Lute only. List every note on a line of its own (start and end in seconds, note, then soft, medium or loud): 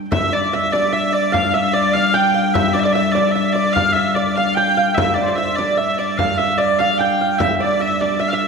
0.12 0.32 E5 medium
0.32 0.53 D5 medium
0.53 0.72 E5 medium
0.73 0.92 D5 medium
0.93 1.12 E5 medium
1.12 1.32 D5 medium
1.32 1.53 F5 medium
1.54 1.73 E5 medium
1.73 2.13 D5 medium
2.14 2.34 G5 medium
2.34 2.54 F5 medium
2.54 2.74 E5 medium
2.75 2.84 D5 medium
2.85 2.95 D5 medium
2.95 3.14 E5 medium
3.15 3.34 D5 medium
3.35 3.54 E5 medium
3.55 3.75 D5 medium
3.76 3.96 F5 medium
3.96 4.16 E5 medium
4.16 4.35 D5 medium
4.37 4.57 F5 medium
4.57 4.77 G5 medium
4.77 4.97 F5 medium
4.98 5.28 E5 medium
5.28 5.37 D5 medium
5.38 5.58 E5 medium
5.59 5.77 D5 medium
5.77 5.98 E5 medium
5.99 6.19 D5 medium
6.19 6.38 F5 medium
6.39 6.58 E5 medium
6.58 6.79 D5 medium
6.80 7.00 F5 medium
7.00 7.21 G5 medium
7.21 7.39 F5 medium
7.40 7.61 E5 medium
7.60 7.81 D5 medium
7.80 8.18 E5 medium
8.19 8.32 E5 medium
8.33 8.48 E5 medium